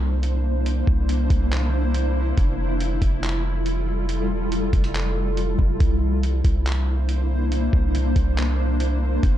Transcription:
Already playing: 808-style bass C2, ambient pad A#3 D4 E4 C5
0.23 closed hi-hat
0.66 closed hi-hat
0.87 808-style bass C2, kick
1.09 closed hi-hat
1.30 808-style bass C2, kick, closed hi-hat
1.52 clap, closed hi-hat
1.94 closed hi-hat
2.37 808-style bass F1, ambient pad G3 F4 A4, kick, closed hi-hat
2.80 closed hi-hat
3.02 808-style bass F1, kick, closed hi-hat
3.23 clap, closed hi-hat
3.66 closed hi-hat
4.09 closed hi-hat
4.30 808-style bass E1
4.52 808-style bass F1, closed hi-hat
4.73 808-style bass F1, kick, closed hi-hat, open hi-hat
4.84 closed hi-hat
4.95 clap, closed hi-hat
5.37 closed hi-hat
5.59 808-style bass F1, kick
5.80 808-style bass C2, ambient pad A#3 D4 E4 C5, kick, closed hi-hat
6.23 closed hi-hat
6.45 808-style bass C2, kick, closed hi-hat
6.66 clap, closed hi-hat
7.09 closed hi-hat
7.52 closed hi-hat
7.73 808-style bass C2, kick
7.95 closed hi-hat
8.16 808-style bass C2, kick, closed hi-hat
8.38 clap, closed hi-hat
8.80 closed hi-hat
9.23 808-style bass F1, ambient pad G3 E4 F4 A4, kick, closed hi-hat

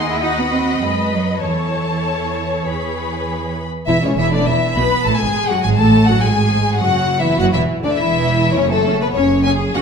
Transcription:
Already playing: double bass section D#2, violin section G#4 F#5 C6, viola section D#5
0.08 cello section E4
0.21 cello section D#4, violin section F#4 F#5 B5
0.39 cello section B3
0.52 cello section C4
0.81 double bass section F#2, cello section G#3, violin section B4 D#5
1.13 cello section F#3
1.41 double bass section E2, cello section E3, violin section A4 C#5 A5, viola section C#5
2.66 double bass section E2, violin section G#4 B4 B5
3.87 double bass section E1, cello section E2, viola section E3, violin section E4 E5
4.02 cello section C#2, viola section C#3, violin section C#4 C#5
4.17 double bass section E1, cello section E2, viola section E3, violin section E4 E5
4.32 cello section D2, viola section D3, violin section D4 D5
4.46 double bass section E1, cello section E2, viola section E3, violin section E4 E5
4.76 double bass section B1, cello section B2, viola section B3, violin section B4 B5
5.05 double bass section A1, cello section A2, viola section A3, violin section A4 A5
5.19 double bass section G#1, cello section G#2, viola section G#3, violin section G#5
5.23 violin section G#4
5.49 cello section F#2, viola section F#3, violin section F#4 F#5
5.63 double bass section G#1, cello section G#2, viola section G#3, violin section G#5
5.68 violin section G#4
5.76 double bass section A1, viola section A3, violin section A5
5.80 cello section A2, violin section A4
6.07 cello section F#2, viola section F#3, violin section F#4 F#5
6.22 double bass section G#1, cello section G#2, viola section G#3, violin section G#4 G#5
6.78 double bass section F#1, cello section F#2, viola section F#3, violin section F#4 F#5
7.19 cello section E2, viola section E3, violin section E4 E5
7.38 double bass section F#1, cello section F#2, viola section F#3, violin section F#4 F#5
7.53 double bass section E1, cello section E2, viola section E3, violin section E4 E5
7.83 cello section D2, viola section D3, violin section D4 D5
7.97 double bass section E1, cello section E2, viola section E3, violin section E4 E5
8.54 cello section F#2, viola section C#4, violin section C#4 C#5
8.58 double bass section F#1
8.71 violin section A3 A4
8.87 viola section C#4
9.02 violin section B3 B4
9.14 double bass section F#1, cello section F#2, viola section C#4, violin section C#5
9.18 violin section C#4
9.44 viola section C#4, violin section G#4 G#5
9.75 double bass section F#1, cello section F#2, viola section C#4, violin section F#4 F#5

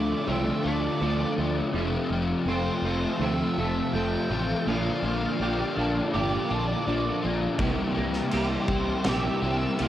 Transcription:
Already playing: fingered electric bass D2, overdriven electric guitar D3 F3 A3 D4 F4, clean electric guitar F3 C4, lead electric guitar D5
0.27 fingered electric bass C2, overdriven electric guitar D3 F3 A3 D4 F4, clean electric guitar C4, lead electric guitar E5
0.63 fingered electric bass D2, overdriven electric guitar A3 D4 F4, lead electric guitar D5
1.00 fingered electric bass D2, overdriven electric guitar D3 F3 A3 D4 F4, clean electric guitar F3
1.38 fingered electric bass D2, clean electric guitar F3, overdriven electric guitar A3 D4 F4
1.74 fingered electric bass F1, overdriven electric guitar F2 C3 F3 A3 C4 F4
2.10 fingered electric bass F1, overdriven electric guitar A3 C4 F4
2.14 overdriven electric guitar F3
2.45 fingered electric bass F1, overdriven electric guitar C3 F3, lead electric guitar C5
2.50 overdriven electric guitar A3 C4 F4
2.82 fingered electric bass F1, overdriven electric guitar F4
2.87 overdriven electric guitar F3 A3 C4
3.19 fingered electric bass D2, overdriven electric guitar F2 C3 F3 A3 C4 F4, lead electric guitar E5
3.57 fingered electric bass F1, overdriven electric guitar F3 A3 C4 F4
3.92 fingered electric bass F1, overdriven electric guitar C3 F3 A3, lead electric guitar G5
3.96 overdriven electric guitar C4 F4
4.30 fingered electric bass A1, overdriven electric guitar F3 A3 C4 F4
4.67 fingered electric bass A#1, overdriven electric guitar A#2 D3 F3 A#3 D4 F4, clean electric guitar F3, lead electric guitar F5
5.02 fingered electric bass A#1, overdriven electric guitar D4 F4
5.07 overdriven electric guitar A#3
5.39 fingered electric bass A#1, overdriven electric guitar A#2 D3 F3 A#3, clean electric guitar G4
5.43 overdriven electric guitar D4 F4
5.77 fingered electric bass A#1, overdriven electric guitar F3 A#3 D4 F4
6.13 fingered electric bass G1, overdriven electric guitar A#2 D3 F3 A#3 D4 F4, clean electric guitar G4, lead electric guitar D5
6.49 fingered electric bass A#1, overdriven electric guitar A#3 D4 F4
6.86 fingered electric bass A#1, overdriven electric guitar A#2 D3 F3 A#3 D4 F4, clean electric guitar F3
7.22 fingered electric bass A#1, overdriven electric guitar A#3 D4 F4
7.59 fingered electric bass C2, overdriven electric guitar C3 G3 A#3 E4 G4, clean electric guitar E3, kick, crash
7.94 fingered electric bass C2, overdriven electric guitar A#3 E4 G4
8.13 snare
8.31 fingered electric bass C2, overdriven electric guitar C3 G3 A#3 E4 G4, crash
8.37 lead electric guitar C5
8.68 fingered electric bass C2, overdriven electric guitar G3 A#3 E4 G4, clean electric guitar C4, kick
9.04 fingered electric bass A#1, overdriven electric guitar C3 G3 A#3 E4 G4, snare, crash
9.10 lead electric guitar E5
9.42 fingered electric bass C2, overdriven electric guitar A#3 E4 G4, clean electric guitar C4
9.78 fingered electric bass C2, overdriven electric guitar C3 G3 A#3 E4 G4, lead electric guitar G5, crash
9.82 clean electric guitar E3

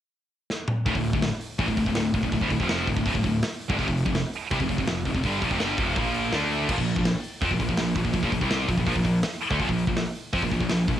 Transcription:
0.50 snare
0.68 mid tom
0.86 picked electric bass D1, distorted electric guitar D2 A2, kick, open hi-hat
0.95 picked electric bass D1, distorted electric guitar D2 A2, kick
1.04 open hi-hat
1.13 picked electric bass D1, distorted electric guitar D2 A2, kick
1.22 snare, open hi-hat
1.41 open hi-hat
1.58 picked electric bass A1, distorted electric guitar A2 E3, kick, open hi-hat
1.67 picked electric bass D1, distorted electric guitar D2 A2, kick
1.77 picked electric bass D1, distorted electric guitar D2 A2, kick, open hi-hat
1.86 picked electric bass D1, distorted electric guitar D2 A2, kick
1.95 picked electric bass D1, distorted electric guitar D2 A2, snare, open hi-hat
2.14 picked electric bass D1, distorted electric guitar D2 A2, kick, open hi-hat
2.23 picked electric bass D1, distorted electric guitar D2 A2, kick
2.32 picked electric bass D1, distorted electric guitar D2 A2, kick, open hi-hat
2.41 picked electric bass D1, distorted electric guitar D2 A2, kick
2.50 picked electric bass D1, distorted electric guitar D2 A2, kick, open hi-hat
2.60 picked electric bass F1, distorted electric guitar F2 C3 F3, kick
2.69 snare, open hi-hat
2.87 picked electric bass D1, distorted electric guitar D2 A2, kick, open hi-hat
2.96 picked electric bass D1, distorted electric guitar D2 A2, kick
3.06 picked electric bass D1, distorted electric guitar D2 A2, kick, open hi-hat
3.14 picked electric bass D1, distorted electric guitar D2 A2, kick
3.23 picked electric bass D1, distorted electric guitar D2 A2, kick, open hi-hat
3.43 snare, open hi-hat
3.61 open hi-hat
3.68 picked electric bass G1, distorted electric guitar G2 D3, kick
3.78 picked electric bass F1, distorted electric guitar F2 C3, kick, open hi-hat
3.87 picked electric bass F1, distorted electric guitar F2 C3, kick
3.97 open hi-hat
4.05 picked electric bass F1, distorted electric guitar F2 C3, kick
4.15 snare, open hi-hat
4.33 open hi-hat
4.51 picked electric bass C2, distorted electric guitar C3 G3, kick, open hi-hat
4.60 picked electric bass F1, distorted electric guitar F2 C3, kick
4.69 picked electric bass F1, distorted electric guitar F2 C3, kick, open hi-hat
4.78 picked electric bass F1, distorted electric guitar F2 C3, kick
4.87 picked electric bass F1, distorted electric guitar F2 C3, snare, open hi-hat
5.06 picked electric bass F1, distorted electric guitar F2 C3, kick, open hi-hat
5.14 picked electric bass F1, distorted electric guitar F2 C3, kick
5.24 picked electric bass G1, distorted electric guitar G2 D3 G3, kick, open hi-hat
5.42 picked electric bass A#1, distorted electric guitar A#2 F3, kick, open hi-hat
5.51 picked electric bass F1, distorted electric guitar F2 C3, kick
5.60 picked electric bass G1, distorted electric guitar G2 D3 G3, snare, open hi-hat
5.78 picked electric bass F1, distorted electric guitar F2 C3 F3, kick, open hi-hat
5.96 picked electric bass A#1, distorted electric guitar A#2 F3 A#3, kick, open hi-hat
6.14 open hi-hat
6.32 picked electric bass D2, distorted electric guitar D3 A3 D4, snare, open hi-hat
6.51 open hi-hat
6.68 picked electric bass A#1, distorted electric guitar A#2 F3, kick, crash
6.78 picked electric bass A#1, distorted electric guitar A#2 F3, kick
6.87 open hi-hat
6.96 picked electric bass A#1, distorted electric guitar A#2 F3, kick
7.05 snare, open hi-hat
7.24 open hi-hat
7.41 picked electric bass F2, distorted electric guitar F3 C4, kick, open hi-hat
7.51 picked electric bass A#1, distorted electric guitar A#2 F3, kick
7.59 picked electric bass A#1, distorted electric guitar A#2 F3, kick, open hi-hat
7.69 picked electric bass A#1, distorted electric guitar A#2 F3, kick
7.77 picked electric bass A#1, distorted electric guitar A#2 F3, snare, open hi-hat
7.95 picked electric bass A#1, distorted electric guitar A#2 F3, kick, open hi-hat
8.04 picked electric bass A#1, distorted electric guitar A#2 F3, kick
8.13 picked electric bass A#1, distorted electric guitar A#2 F3, kick, open hi-hat
8.23 picked electric bass A#1, distorted electric guitar A#2 F3, kick
8.32 picked electric bass A#1, distorted electric guitar A#2 F3, kick, open hi-hat
8.41 picked electric bass C2, distorted electric guitar C3 G3 C4, kick
8.51 snare, open hi-hat
8.68 picked electric bass A#1, distorted electric guitar A#2 F3, kick, open hi-hat
8.77 picked electric bass A#1, distorted electric guitar A#2 F3, kick
8.86 picked electric bass A#1, distorted electric guitar A#2 F3, kick, open hi-hat
8.95 picked electric bass A#1, distorted electric guitar A#2 F3, kick
9.04 picked electric bass A#1, distorted electric guitar A#2 F3, kick, open hi-hat
9.23 snare, open hi-hat
9.41 open hi-hat
9.51 picked electric bass D2, distorted electric guitar D3 A3, kick
9.59 picked electric bass A#1, distorted electric guitar A#2 F3, kick, open hi-hat
9.69 picked electric bass A#1, distorted electric guitar A#2 F3, kick
9.78 open hi-hat
9.87 picked electric bass A#1, distorted electric guitar A#2 F3, kick
9.97 snare, open hi-hat
10.15 open hi-hat
10.33 picked electric bass F2, distorted electric guitar F3 C4, kick, open hi-hat
10.42 picked electric bass A#1, distorted electric guitar A#2 F3, kick
10.51 picked electric bass A#1, distorted electric guitar A#2 F3, kick, open hi-hat
10.60 picked electric bass A#1, distorted electric guitar A#2 F3, kick
10.69 picked electric bass A#1, distorted electric guitar A#2 F3, snare, open hi-hat
10.88 picked electric bass A#1, distorted electric guitar A#2 F3, kick, open hi-hat

